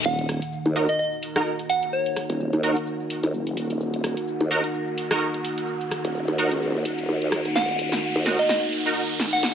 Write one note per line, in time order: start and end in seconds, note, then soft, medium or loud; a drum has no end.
0.05 0.40 D#1 medium
0.05 9.54 D#4 medium
0.05 9.54 A#4 medium
0.05 0.25 F#5 medium
0.05 9.54 F#5 medium
0.05 riser medium
0.05 cabasa soft
0.19 closed hi-hat medium
0.19 cabasa soft
0.29 cross-stick medium
0.29 open hi-hat loud
0.29 cabasa medium
0.42 closed hi-hat medium
0.42 cabasa soft
0.53 cabasa soft
0.66 0.87 D#2 medium
0.66 closed hi-hat soft
0.66 cabasa soft
0.76 0.87 D#4 medium
0.76 0.87 F#4 medium
0.76 0.87 A#4 loud
0.76 open hi-hat loud
0.76 cabasa medium
0.89 0.96 D#5 medium
0.89 closed hi-hat medium
0.89 cabasa soft
0.99 1.08 D#5 medium
0.99 cabasa soft
1.13 cabasa soft
1.23 open hi-hat loud
1.23 cabasa medium
1.36 1.51 D#4 medium
1.36 1.51 F#4 medium
1.36 1.51 A#4 loud
1.36 cross-stick medium
1.36 closed hi-hat medium
1.36 cabasa soft
1.46 cabasa soft
1.59 closed hi-hat medium
1.59 cabasa soft
1.70 1.89 F#5 medium
1.70 open hi-hat loud
1.70 cabasa medium
1.83 closed hi-hat medium
1.83 cabasa soft
1.93 2.40 C#5 medium
1.93 cabasa soft
2.06 closed hi-hat medium
2.06 cabasa soft
2.16 cross-stick medium
2.16 open hi-hat loud
2.16 cabasa medium
2.30 2.51 D#1 medium
2.30 closed hi-hat medium
2.30 cabasa soft
2.40 cabasa soft
2.53 2.74 D#2 medium
2.53 closed hi-hat soft
2.53 cabasa soft
2.63 2.75 D#4 medium
2.63 2.75 F#4 medium
2.63 2.75 A#4 medium
2.63 open hi-hat loud
2.63 cabasa medium
2.76 closed hi-hat medium
2.76 cabasa soft
2.87 cabasa soft
3.00 cabasa soft
3.10 open hi-hat loud
3.10 cabasa medium
3.23 3.32 D#2 medium
3.23 closed hi-hat medium
3.23 cabasa soft
3.34 3.55 F#1 medium
3.34 cabasa soft
3.47 closed hi-hat soft
3.47 cabasa soft
3.57 3.79 D#1 medium
3.57 open hi-hat loud
3.57 cabasa medium
3.70 closed hi-hat medium
3.70 cabasa soft
3.80 4.15 D#1 medium
3.80 cabasa soft
3.94 closed hi-hat medium
3.94 cabasa soft
4.04 cross-stick medium
4.04 open hi-hat loud
4.04 cabasa medium
4.17 closed hi-hat medium
4.17 cabasa soft
4.28 cabasa soft
4.41 4.62 D#2 medium
4.41 closed hi-hat soft
4.41 cabasa soft
4.51 4.62 D#4 medium
4.51 4.62 F#4 medium
4.51 4.62 A#4 loud
4.51 open hi-hat loud
4.51 cabasa medium
4.64 closed hi-hat medium
4.64 cabasa soft
4.74 cabasa soft
4.88 cabasa soft
4.98 open hi-hat loud
4.98 cabasa medium
5.11 5.26 D#4 medium
5.11 5.26 F#4 medium
5.11 5.26 A#4 loud
5.11 cross-stick medium
5.11 closed hi-hat medium
5.11 cabasa soft
5.21 cabasa soft
5.34 closed hi-hat soft
5.34 cabasa soft
5.45 open hi-hat loud
5.45 cabasa medium
5.58 closed hi-hat medium
5.58 cabasa soft
5.68 cabasa soft
5.81 closed hi-hat soft
5.81 cabasa soft
5.91 cross-stick medium
5.91 open hi-hat loud
5.91 cabasa medium
6.05 6.26 D#1 loud
6.05 closed hi-hat medium
6.05 cabasa soft
6.15 cabasa soft
6.28 6.49 D#2 medium
6.28 closed hi-hat soft
6.28 cabasa soft
6.38 6.50 D#4 medium
6.38 6.50 F#4 medium
6.38 6.50 A#4 medium
6.38 open hi-hat loud
6.38 cabasa medium
6.52 6.73 C#2 medium
6.52 closed hi-hat medium
6.52 cabasa soft
6.62 cabasa soft
6.75 6.84 D#2 medium
6.75 cabasa soft
6.85 7.07 D#1 loud
6.85 open hi-hat loud
6.85 cabasa medium
6.98 closed hi-hat medium
6.98 cabasa soft
7.09 7.43 D#2 medium
7.09 cabasa soft
7.22 closed hi-hat soft
7.22 cabasa soft
7.32 cross-stick medium
7.32 open hi-hat loud
7.32 cabasa medium
7.45 7.54 D#1 medium
7.45 closed hi-hat medium
7.45 cabasa soft
7.56 7.90 D#1 medium
7.56 7.75 F#5 medium
7.56 snare soft
7.56 cabasa soft
7.69 closed hi-hat soft
7.69 cabasa soft
7.79 open hi-hat loud
7.79 cabasa medium
7.92 snare soft
7.92 closed hi-hat medium
7.92 cabasa soft
8.03 cabasa soft
8.16 8.37 D#2 medium
8.16 closed hi-hat soft
8.16 cabasa soft
8.26 8.37 D#4 medium
8.26 8.37 F#4 medium
8.26 8.37 A#4 loud
8.26 snare medium
8.26 open hi-hat loud
8.26 cabasa medium
8.39 8.46 D#5 medium
8.39 closed hi-hat medium
8.39 cabasa soft
8.49 8.58 D#5 medium
8.49 snare medium
8.49 cabasa soft
8.63 cabasa soft
8.73 open hi-hat loud
8.73 cabasa medium
8.86 9.01 D#4 medium
8.86 9.01 F#4 medium
8.86 9.01 A#4 loud
8.86 closed hi-hat medium
8.86 cabasa soft
8.96 cabasa soft
9.09 closed hi-hat soft
9.09 cabasa soft
9.20 snare medium
9.20 open hi-hat loud
9.20 cabasa medium
9.33 9.39 F#5 medium
9.33 closed hi-hat medium
9.33 cabasa soft
9.43 9.51 F#5 medium
9.43 snare medium
9.43 cabasa soft